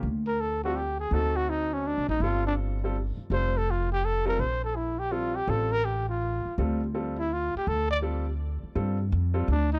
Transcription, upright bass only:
X:1
M:3/4
L:1/8
Q:"Swing" 1/4=165
K:Dm
V:1 name="Upright bass" clef=bass
D,,6 | D,,4- (3D,, C,, A,,, | G,,,4- G,,, z | F,,,6 |
B,,,6 | A,,,4- A,,, z | D,,4- D,, z | D,,4- D,, z |
[K:Dphr] G,,2 F,,2 D,,2 |]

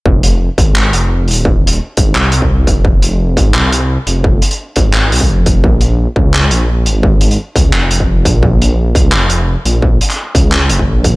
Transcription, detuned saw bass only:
X:1
M:4/4
L:1/8
Q:"Swing 16ths" 1/4=172
K:Fm
V:1 name="Detuned saw bass" clef=bass
F,,,2 z A,,,2 F,,,2 E,,,- | E,,,2 z A,,, C,,3 F,,,- | F,,,3 A,,, C,,2 z F,,,- | F,,, z2 A,,,2 C,, F,,,2 |
B,,,2 z D,,2 B,,,2 A,,,- | A,,,2 z D,, F,,,3 B,,,- | B,,,3 D,, F,,,2 z B,,,- | B,,, z2 D,,2 F,,, B,,,2 |]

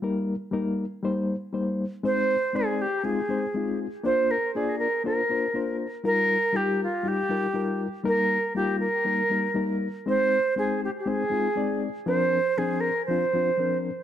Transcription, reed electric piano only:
X:1
M:4/4
L:1/8
Q:1/4=120
K:Eb
V:1 name="Reed electric piano"
[G,B,EB] z [G,B,EB] z [G,B,Ec] z [G,B,Ec] z | [A,CEc] z [A,CEd] z [A,CEF] [A,CEc] [A,CEF] z | [B,DFc] z [B,DFd] z [B,DFc] [B,DFc] [B,DFc] z | [G,EFB] z [G,EFG] z [G,EFG] [G,EFB] [G,EFB] z |
[G,B,EB] z [G,B,EF] z [G,B,EB] [G,B,EB] [G,B,EB] z | [A,CEc] z [A,CEc] z [A,CEc] [A,CEF] [A,CEd] z | [F,CDB] z [F,CDA] z [F,CDF] [F,CDF] [F,CDB] z |]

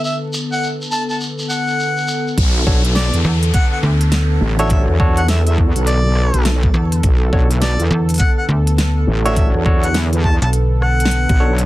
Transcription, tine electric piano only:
X:1
M:4/4
L:1/16
Q:"Swing 16ths" 1/4=103
K:Bm
V:1 name="Tine electric piano"
z16 | z2 [DFAc] z12 [DFAc]- | [DFAc]2 [DFAc] z12 z | z2 [DFAc] z12 [DFAc]- |
[DFAc]2 [DFAc] z8 z3 [DFAc] z |]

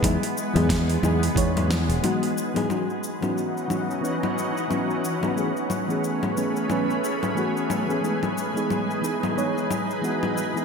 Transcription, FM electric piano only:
X:1
M:4/4
L:1/16
Q:"Swing 16ths" 1/4=90
K:E
V:1 name="FM electric piano"
[E,G,B,DG] z2 [E,G,B,DG]3 [E,G,B,DG]2 [E,G,B,Dc]2 z2 [E,G,B,DF]3 [E,G,B,DG] | [E,B,CDF] z2 [E,B,CDF]3 [E,B,CDF]2 [E,B,CDB]2 z2 [E,B,CDF]3 [E,B,CDF] | [E,A,B,CG] z2 [E,A,B,CG]3 [E,A,B,CG]2 [E,A,B,CB]2 z2 [E,A,B,CF]3 [E,A,B,CG] | [E,G,B,DG] z2 [E,G,B,DG]3 [E,G,B,DG]2 [E,G,B,Dc]2 z2 [E,G,B,DF]3 [E,G,B,DG] |]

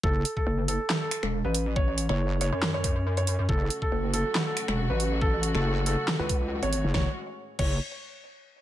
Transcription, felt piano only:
X:1
M:4/4
L:1/16
Q:"Swing 16ths" 1/4=139
K:F#m
V:1 name="Felt piano"
A3 A3 A3 A3 z B3 | c3 c3 c3 c3 z c3 | A3 A3 A3 A3 z B3 | A3 A3 A3 B3 z c3 |
c z4 z c2 z8 |]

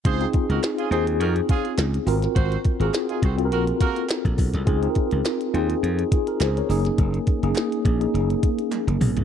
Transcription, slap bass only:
X:1
M:4/4
L:1/16
Q:"Swing 16ths" 1/4=104
K:Db
V:1 name="Slap bass" clef=bass
D,,2 z D,, z2 E,,2 F,,2 z2 D,,2 A,,,2 | A,,,2 z A,,, z2 C,,2 B,,,2 z3 B,,, _C,, =C,, | D,,2 z D,, z2 E,,2 F,,2 z2 D,,2 G,,,2 | G,,,2 z G,,, z2 B,,,2 G,,,2 z3 G,,, _C,, =C,, |]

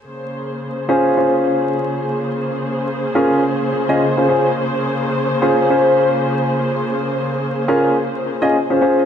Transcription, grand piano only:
X:1
M:4/4
L:1/16
Q:"Swing 16ths" 1/4=106
K:Bbm
V:1 name="Grand piano"
z6 [DFAc]2 [DFAc]8- | [DFAc]6 [DFAB]2 z3 [DFAe] z [DFAc] [DFAc] z | z6 [DFAc]2 [DFAc]8- | [DFAc]6 [DFAB]2 z3 [DFAe] z [DFAc] [DFAc] z |]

